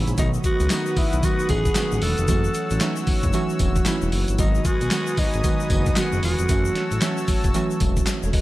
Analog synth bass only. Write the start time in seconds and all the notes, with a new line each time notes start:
0.07 A#1
0.18 B1
0.60 C#2
0.97 B1
1.13 B1
1.49 A1
1.92 A1
2.02 E1
2.18 F1
2.28 F#1
2.71 A1
3.07 F#1
3.23 F#1
3.60 E1
4.02 E1
4.12 F#1
4.28 G1
4.39 G#1
4.81 B1
5.18 G#1
5.34 G#1
5.70 F#1
6.13 F#1
6.23 E1
6.39 F1
6.49 F#1
6.91 A1
7.28 F#1
7.44 F#1
7.81 E1
8.23 E1
8.33 E1